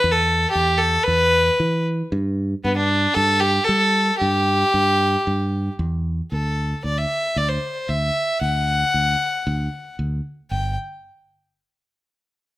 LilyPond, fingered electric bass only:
\new Staff \with { instrumentName = "Fingered electric bass" } { \clef bass \time 4/4 \key d \mixolydian \tempo 4 = 114 e,4 e,4 e,4 e4 | g,4 g,4 g,4 g4 | g,4 g,4 g,4 e,4 | d,4 d,8 r8 d,8 r8 d,8 r8 |
d,4 d,8 r8 d,8 r8 d,8 r8 | g,,8 r2. r8 | }